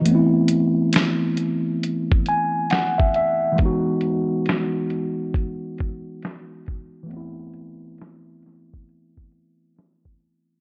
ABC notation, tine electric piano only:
X:1
M:4/4
L:1/16
Q:"Swing 16ths" 1/4=68
K:Alyd
V:1 name="Tine electric piano"
z8 z2 g2 f e e2 | z16 | z16 |]
V:2 name="Tine electric piano"
[E,A,B,=CE]16 | [E,G,B,DF]16 | [E,A,B,=CE]16 |]